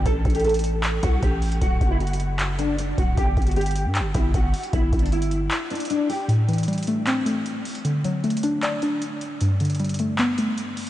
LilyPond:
<<
  \new Staff \with { instrumentName = "Nylon-string guitar" } { \time 4/4 \key a \dorian \tempo 4 = 154 a'8. g'16 a'4. fis'8 g'4 | fis'8. e'16 fis'4. d'8 d'8 fis'8 | g'8. fis'16 g'4. e'8 fis'4 | e'8. d'16 e'4. d'8 d'8 g'8 |
r1 | r1 | r1 | }
  \new Staff \with { instrumentName = "Synth pluck" } { \time 4/4 \key a \dorian r1 | r1 | r1 | r1 |
a,8 e8 g8 a8 c'8 a4. | d8 fis8 a8 d'8 d''8 d'4. | g,8 d8 g8 a8 b8 a4. | }
  \new Staff \with { instrumentName = "808-style bass" } { \clef bass \time 4/4 \key a \dorian a,,8 a,,2 c,8 a,,4 | d,,8 fis,,2. d,,8 | g,,8 g,,4~ g,,16 g,16. g,,16. g,,8 g,,8 r8 | g,,8 g,,4. r2 |
r1 | r1 | r1 | }
  \new DrumStaff \with { instrumentName = "Drums" } \drummode { \time 4/4 <hh bd>8 <hh bd>32 hh32 hh32 hh32 hh32 hh32 hh32 hh32 hh8 <hc hh>8 <hh bd>8 <hh bd>8 <hh hho>16 hh16 | <hh bd>8 <hh bd>8 \tuplet 3/2 { hh16 hh16 hh16 hh16 r16 r16 } <hc hh>8 hh8 hh8 <hh bd>8 | <hh bd>8 <hh bd>32 hh32 hh32 hh32 hh32 hh32 hh32 hh32 hh8 <hc hh>8 <hh bd>8 <hh bd>8 <hh hho>16 hh16 | \tuplet 3/2 { <hh bd>16 r16 r16 <hh bd>16 hh16 hh16 } hh16 hh16 hh8 <hc hh>8 hh32 hh32 hh32 hh32 hh8 hho8 |
hh8 hh32 hh32 hh32 hh32 hh32 hh32 hh32 hh32 hh8 <hc hh>8 hh8 hh8 <hh hho>16 hh16 | hh8 hh8 \tuplet 3/2 { hh16 hh16 hh16 hh16 r16 r16 } <hc hh>8 hh8 hh8 hh8 | hh8 hh32 hh32 hh32 hh32 hh32 hh32 hh32 hh32 hh8 <hc hh>8 hh8 hh8 <hh hho>16 hh16 | }
>>